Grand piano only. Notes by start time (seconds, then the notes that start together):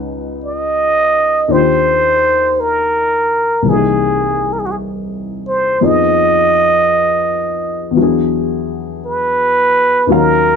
Already playing: C#2 C#3 D#4 F4 B4
1.48 D#2 D#3 D4 F4
1.53 G4
3.62 C2 C3
3.66 E3 A#3
3.71 D#4 G#4
5.81 F2 F3 B3 D#4 G#4
7.91 E2 E3
7.97 F#3 D4
8.02 G#4
10.07 D#2 D#3 F#3
10.11 C#4 F5